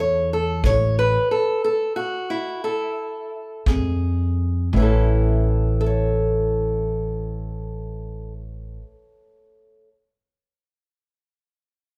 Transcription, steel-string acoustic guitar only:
Already playing: A2
0.00 C#5
0.33 A4
0.64 A2 C#5
0.99 B4
1.31 A4
1.64 A4
1.96 F#4
2.30 E4
2.64 A4
3.67 A#2 G#4
4.74 A2 E3 C#4
4.80 E4 A4
5.81 A4
5.86 C#5

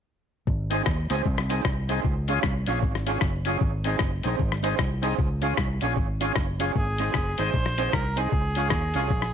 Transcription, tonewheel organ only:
0.70 C4 D#4 G#4
1.10 C4 D#4 G#4
1.49 C4 D#4 G#4
1.89 C4 D#4 G#4
2.28 C#4 F4 G#4
2.67 C#4 F4 G#4
3.06 C#4 F4 G#4
3.45 C#4 F4 G#4
3.84 C4 D#4 G#4
4.24 C4 D#4 G#4
4.63 C4 D#4 G#4
5.02 C4 D#4 G#4
5.43 C#4 F4 G#4
5.82 C#4 F4 G#4
6.21 C#4 F4 G#4
6.60 C#4 F4 G#4
6.99 C4 D#4 G#4
7.38 C4 D#4 G#4
7.78 C4 D#4 G#4
8.17 C4 D#4 G#4
8.56 C#4 F4 G#4
8.96 C#4 F4 G#4

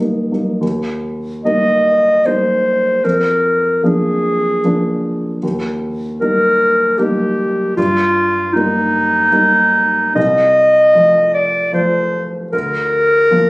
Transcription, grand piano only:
0.00 G3 A#3 D#4
0.31 G3 A#3 D#4
0.61 D#2
1.45 G3 A#3 D#4
2.26 G3 A#3 D#4
3.04 F2
3.83 F3 A#3 D4
4.64 F3 A#3 D4
5.43 D#2
6.21 G3 A#3 D#4
6.99 G3 A#3 D#4
7.77 G2
8.55 G3 A#3 D#4
9.32 G3 A#3 D#4
10.16 C2
10.95 F3 A3 F4
11.72 F3 A3 F4
12.53 D2
13.31 F3 A#3 F4

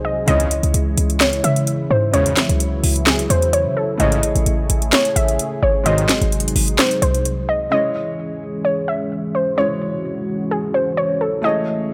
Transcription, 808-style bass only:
Already playing: C2
0.28 C#2
0.63 C#2
0.74 C#2
0.97 C#2
1.44 C#3
1.90 G#2
2.14 D#2
2.49 C#2
2.83 C#2
3.30 E2
3.66 C#3
4.00 A1
4.35 A1
4.46 A1
4.70 A1
5.16 A1
5.63 G#1
6.21 G#1
6.56 G#1
7.02 C2

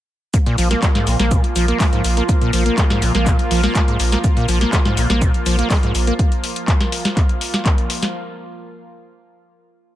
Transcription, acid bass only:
0.34 A#2
0.46 A#2
0.58 F3
0.71 A#3
0.83 G#3
0.95 G#2
1.07 A#2
1.20 A#3
1.31 A#2
1.56 F3
1.68 A#3
1.80 G#3
1.93 G#2
2.17 A#3
2.29 A#2
2.41 A#2
2.53 F3
2.66 A#3
2.78 G#3
2.90 G#2
3.02 A#2
3.15 A#3
3.26 A#2
3.51 F3
3.63 A#3
3.75 G#3
3.88 G#2
4.12 A#3
4.24 A#2
4.37 A#2
4.48 F3
4.61 A#3
4.73 G#3
4.85 G#2
4.97 A#2
5.10 A#3
5.22 A#2
5.46 F3
5.59 A#3
5.70 G#3
5.83 G#2
6.07 A#3

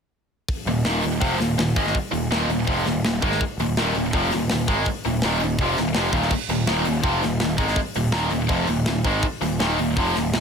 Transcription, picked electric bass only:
0.66 D#1
0.85 D#1
1.04 D#1
1.22 F1
1.40 D#1
1.58 D#1
1.77 G#1
2.13 D#1
2.29 D#1
2.47 D#1
2.68 F1
2.86 D#1
3.04 D#1
3.22 G#1
3.58 D#1
3.77 D#1
3.95 D#1
4.13 F1
4.33 D#1
4.52 D#1
4.69 G#1
5.06 D#1
5.24 D#1
5.42 D#1
5.59 F1
5.78 D#1
5.96 F1
6.13 D#1
6.49 D#1
6.68 D#1
6.86 D#1
7.03 F1
7.23 D#1
7.41 D#1
7.59 G#1
7.96 D#1
8.13 D#1
8.32 D#1
8.49 F1
8.68 D#1
8.87 D#1
9.04 G#1
9.42 D#1
9.60 D#1
9.79 D#1
9.97 F1
10.16 D#1
10.33 D#1

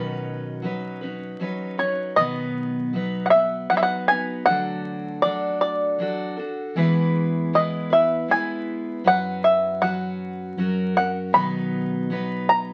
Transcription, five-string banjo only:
Already playing: B4
1.79 C#5
2.16 D#5
3.26 F#5
3.30 E5
3.70 F#5
3.77 E5
3.83 F#5
4.08 G#5
4.46 F#5
5.22 D5
5.61 D5
7.55 D#5
7.93 E5
8.31 G#5
9.07 F#5
9.44 E5
9.82 F#5
10.97 F#5
11.34 B5
12.49 A#5

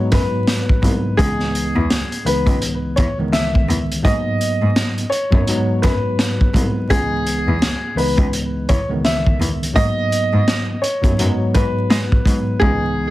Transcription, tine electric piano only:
Already playing: G#2 F#3 G#3 B3 D#4
0.82 G#2 F#3 G#3 B3 D#4
1.17 C#2 E3 G#3 B3 D#4
2.24 C#2 E3 G#3 B3 D#4
3.18 C#2 D#3 E3 G#3 B3
4.02 G#2 F#3 A#3 B3 D#4
5.30 G#2 F#3 A#3 B3 D#4
5.48 G#2 F#3 G#3 B3 D#4
6.54 G#2 F#3 G#3 B3 D#4
6.88 C#2 E3 G#3 B3 D#4
7.96 C#2 E3 G#3 B3 D#4
8.89 C#2 D#3 E3 G#3 B3
9.73 G#2 F#3 A#3 B3 D#4
11.01 G#2 F#3 A#3 B3 D#4
11.19 G#2 F#3 G#3 B3 D#4
12.25 G#2 F#3 G#3 B3 D#4
12.59 C#2 E3 G#3 B3 D#4

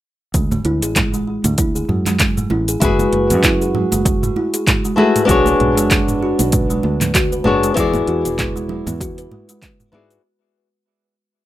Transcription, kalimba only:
0.35 G#3
0.52 A3
0.65 E4
0.83 G#4
0.97 G#3
1.14 G#3
1.28 G#3
1.45 A3
1.59 E4
1.75 G#4
1.89 G#3
2.06 G#3
2.20 G#3
2.37 A3
2.51 E4
2.69 G#4
2.82 G#3
3.00 G#3
3.13 G#3
3.31 A3
3.44 E4
3.62 G#4
3.75 G#3
3.92 G#3
4.06 G#3
4.23 A3
4.37 E4
4.54 G#4
4.67 G#3
4.85 G#3
4.99 G#3
5.16 A3
5.29 F#4
5.47 B4
5.60 G#3
5.77 G#3
5.91 G#3
6.09 B3
6.23 F#4
6.39 B4
6.53 G#3
6.70 G#3
6.84 G#3
7.01 B3
7.15 F#4
7.32 B4
7.46 G#3
7.63 G#3
7.77 G#3
7.95 B3
8.08 F#4
8.25 B4
8.39 G#3
8.56 G#3
8.70 G#3
8.87 B3
9.01 F#4
9.19 B4
9.33 G#3
9.50 G#3
9.63 G#3
9.80 B3
9.94 F#4
10.11 B4

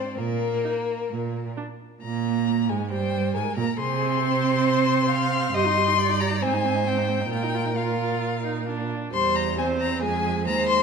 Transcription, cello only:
0.17 A#2
1.10 A#2
2.02 A#2
2.69 G#2
2.91 G2
3.35 G#2
3.57 A#2
3.79 C3
5.55 G2
6.42 G#2
7.32 A#2
9.14 E2
10.03 F2
10.47 D#2

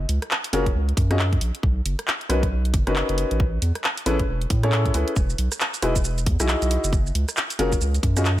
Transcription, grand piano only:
0.53 C#4 F4 F#4 G#4 A#4
1.11 C#4 F4 F#4 G#4 D#5
2.29 C#4 D#4 F#4 A#4 B4
2.87 C#4 D#4 F#4 A#4 B4
4.06 C#4 E4 G#4 A4 B4
4.64 C#4 E4 G#4 A4 C#5
4.94 C#4 E4 G#4 A4 B4
5.83 D#4 E4 F#4 G#4 B4
6.40 D#4 E4 F#4 G#4 D#5
7.59 C#4 F4 F#4 G#4 A#4
8.16 C#4 F4 F#4 G#4 D#5

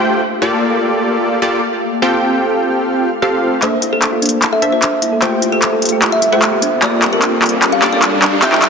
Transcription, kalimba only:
3.62 C5
3.93 A4
4.53 E5
4.72 C5
5.22 C5
5.52 A4
6.12 E5
6.33 C5
6.82 D5
7.13 A#4
7.72 F5
7.92 D5
8.42 E5

